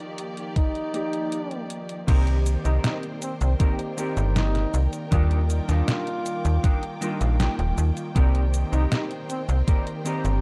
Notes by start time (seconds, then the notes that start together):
Already playing: D#3 F3 A#3 D#4 G4 D5
0.18 closed hi-hat
0.37 closed hi-hat
0.56 D#4, kick, closed hi-hat
0.75 closed hi-hat
0.93 F3 A#3 D#4 G4 D5, closed hi-hat
1.13 closed hi-hat
1.32 closed hi-hat
1.51 closed hi-hat
1.70 closed hi-hat
1.89 closed hi-hat
2.07 C2 D#3 A#3 C4 D#4 G4 A#4 C5 D5 G5, kick, closed hi-hat, crash, cabasa
2.27 closed hi-hat
2.46 closed hi-hat, cabasa
2.64 C2 C4 D#4 G4 A#4, closed hi-hat, cabasa
2.84 D#4, snare, closed hi-hat, cabasa
3.03 closed hi-hat
3.22 C4, closed hi-hat, cabasa
3.40 C2 C4, muted clean electric guitar stroke, closed hi-hat, cabasa
3.59 D#3 A#3 C4 D#4 G4 A#4 D5, kick, closed hi-hat, cabasa
3.79 closed hi-hat
3.97 D#3 A#3 C4 D#4 G4 A#4 D5, closed hi-hat, cabasa
4.17 G1, closed hi-hat, cabasa
4.36 D#4, snare, closed hi-hat, cabasa
4.55 snare, closed hi-hat
4.74 C2, closed hi-hat, cabasa
4.93 closed hi-hat, cabasa
5.11 D#2 D#3 G3 A#3 D4 D#4 F4 G4 A#4 D5 D6, kick, closed hi-hat, cabasa
5.31 closed hi-hat
5.50 closed hi-hat, cabasa
5.68 D#2 D4 D#4 F4 G4 A#4, snare, closed hi-hat, cabasa
5.88 snare, closed hi-hat, cabasa
6.07 closed hi-hat
6.26 closed hi-hat, cabasa
6.44 D#2, muted clean electric guitar stroke, closed hi-hat, cabasa
6.63 D4 D#4 G4 A#4, kick, closed hi-hat, cabasa
6.83 closed hi-hat
7.01 D#3 G3 A#3 D4 D#4 F4 G4 A#4 D#5, closed hi-hat, cabasa
7.21 A#1 F5, closed hi-hat, cabasa
7.40 G5, snare, closed hi-hat, cabasa
7.59 D#1 G5, closed hi-hat
7.78 D#2, closed hi-hat, cabasa
7.97 closed hi-hat, cabasa
8.14 C2 D#3 A#3 C4 D#4 G4 A#4 C5 D5, kick, closed hi-hat, cabasa
8.35 closed hi-hat
8.54 closed hi-hat, cabasa
8.72 C2 C4 D#4 G4 A#4, closed hi-hat, cabasa
8.92 D#4, snare, closed hi-hat, cabasa
9.11 closed hi-hat
9.30 C4, closed hi-hat, cabasa
9.49 C2 C4, closed hi-hat, cabasa
9.67 D#3 A#3 C4 D#4 G4 A#4 D5, kick, closed hi-hat, cabasa
9.87 closed hi-hat
10.04 D#3 A#3 C4 D#4 G4 A#4 D5, closed hi-hat, cabasa
10.25 G1, closed hi-hat, cabasa